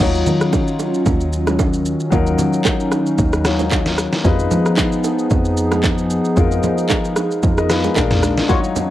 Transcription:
Already playing: F#3
0.00 D#2 D#3 F#3 C#4 D#4 F4 C#5, kick, crash, low conga, shaker
0.15 shaker
0.26 D#3, low conga, shaker
0.41 cross-stick, shaker
0.53 kick, high bongo, low bongo, shaker
0.68 shaker
0.79 high bongo, shaker
0.94 shaker
1.06 D#2, kick, low conga, shaker
1.20 shaker
1.33 shaker
1.47 cross-stick, low bongo, shaker
1.59 kick, high bongo, shaker
1.73 shaker
1.86 shaker
2.00 shaker
2.10 D#2 F#3 D#4 F4 A#4, kick, low conga, shaker
2.27 shaker
2.38 D#3, low conga, shaker
2.53 shaker
2.65 kick, clap, high bongo, low bongo, shaker
2.80 shaker
2.92 cross-stick, high bongo, shaker
3.06 shaker
3.18 D#2, kick, low conga, shaker
3.33 cross-stick, shaker
3.44 F#3 D#4 F4 C#5, cross-stick, snare, shaker
3.59 low bongo, shaker
3.71 kick, clap, high bongo, shaker
3.86 snare, shaker
3.98 cross-stick, shaker
4.13 snare, shaker
4.23 F2 F3 G3 B3 D#4 F4 G#4 B4, kick, low conga, shaker
4.29 G#3
4.39 shaker
4.51 F3, low conga, shaker
4.66 cross-stick, shaker
4.77 kick, clap, high bongo, low bongo, shaker
4.92 shaker
5.04 high bongo, shaker
5.19 shaker
5.30 F2, kick, low conga, shaker
5.45 shaker
5.57 shaker
5.72 cross-stick, low bongo, shaker
5.84 kick, clap, high bongo, shaker
5.98 shaker
6.10 shaker
6.25 shaker
6.35 F2 G#3 D#4 F4 A#4, kick, low conga, shaker
6.51 shaker
6.63 F3, low conga, shaker
6.78 shaker
6.89 kick, clap, high bongo, low bongo, shaker
7.05 shaker
7.16 cross-stick, high bongo, shaker
7.31 shaker
7.43 F2, kick, low conga, shaker
7.58 A#4 D#5, cross-stick, shaker
7.70 F4 B4, cross-stick, snare, shaker
7.84 D#4 G#4, low bongo, shaker
7.95 A#1 G#3 A#3 D4 F4 A#4, kick, clap, high bongo, shaker
8.11 snare, mid tom, shaker
8.23 cross-stick, low bongo, shaker
8.37 snare, shaker
8.48 D#3 F#3 C#4 D#4 F4 F#4 C#5 F5, kick, low conga, shaker
8.52 C#5
8.64 shaker
8.76 low conga, shaker

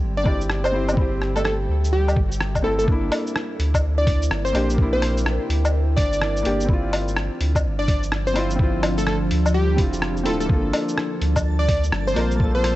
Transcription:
Already playing: G3 C4 E4 G4 C5
0.02 G1
0.17 D5
0.24 C4 E4, kick, low woodblock
0.28 G4
0.41 shaker
0.49 cross-stick
0.58 E5
0.64 C5, low woodblock, shaker
0.71 C4 E4 G4
0.89 low woodblock, shaker
0.93 C4
0.97 E4, kick
1.01 G4
1.22 cross-stick
1.36 A4, low woodblock, shaker
1.45 A4, cross-stick
1.69 D2
1.84 shaker
1.93 G4
2.08 low woodblock, shaker
2.16 G1, kick
2.32 shaker
2.40 cross-stick
2.55 kick, low woodblock, shaker
2.62 C4 E4 A4
2.79 A4, shaker
2.84 G1 A#3 E4
2.88 D4 E4, kick
3.03 A#4
3.12 open hi-hat, low woodblock
3.27 shaker
3.36 cross-stick
3.59 D2, open hi-hat
3.74 kick, low woodblock, shaker
3.98 D5
4.07 kick, open hi-hat
4.22 shaker
4.30 G1, cross-stick
4.45 C5, shaker
4.52 A#1 A#3 D4 G4, open hi-hat, low woodblock
4.70 shaker
4.74 A#3 D4, kick
4.82 E4
4.93 C5
5.02 cross-stick, open hi-hat
5.17 shaker
5.26 cross-stick
5.49 D2, open hi-hat
5.65 low woodblock, shaker
5.96 G1 D5, kick, open hi-hat
6.13 shaker
6.21 cross-stick
6.37 shaker
6.42 G1 A#3 D4 G4, open hi-hat
6.60 shaker
6.65 C4 D4, kick
6.69 E4 F4
6.84 F3
6.93 open hi-hat, low woodblock
7.08 shaker
7.16 cross-stick
7.40 D2, open hi-hat
7.55 kick, low woodblock, shaker
7.64 G1
7.79 D5
7.88 kick, open hi-hat
8.03 shaker
8.12 cross-stick
8.27 C5, shaker
8.34 C4 E4, open hi-hat, low woodblock
8.38 F4
8.50 shaker
8.55 C4 E4, kick
8.63 F4
8.83 cross-stick, open hi-hat, low woodblock
8.98 A4, shaker
9.06 A4, cross-stick
9.31 D2, open hi-hat
9.46 low woodblock, shaker
9.54 G4
9.76 F1 C4 E4 F4, kick, open hi-hat
9.93 shaker
10.02 cross-stick
10.17 shaker
10.23 D1 C4 E4 A4, open hi-hat
10.28 F4
10.40 A4, shaker
10.46 G1 G3 A#3 F4, kick
10.50 A4 A5
10.73 open hi-hat, low woodblock
10.89 shaker
10.96 A4, cross-stick
11.21 D2, open hi-hat
11.36 kick, low woodblock, shaker
11.43 A#3
11.59 D5
11.68 kick, open hi-hat
11.84 shaker
11.92 G1, cross-stick
12.07 C5, shaker
12.14 A#1 A#3 F4 A#4, open hi-hat, low woodblock
12.31 shaker
12.36 A#3
12.40 F4, kick
12.44 A4
12.55 C5
12.64 cross-stick, open hi-hat

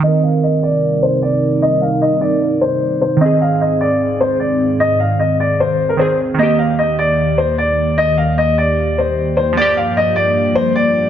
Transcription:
0.00 C3 D#3 G3 C4 D#4 A#4 D#5
0.08 A#4
0.23 F5
0.43 D#5
0.63 D5
1.03 C5
1.22 D5
1.62 D#5
1.81 F5
2.02 D#5
2.21 D5
2.61 C5
3.02 C5
3.17 D#3
3.21 G#2 D#3 C4 G#4 D#5
3.26 G#4
3.41 F5
3.61 D#5
3.81 D5
4.21 C5
4.40 D5
4.80 D#5
5.00 F5
5.20 D#5
5.40 D5
5.60 C5
5.89 A#4
5.97 D#3 C4 C5
6.01 G#4
6.34 D#3
6.39 D#2 A#3 G4 D#5
6.43 G4
6.59 F5
6.79 D#5
6.99 D5
7.38 C5
7.58 D5
7.98 D#5
8.18 F5
8.38 D#5
8.58 D5
8.98 C5
9.37 C5
9.53 F3
9.57 G2 F3 A#3 D5
9.62 G4
9.77 F5
9.97 D#5
10.16 D5
10.55 C5
10.76 D5

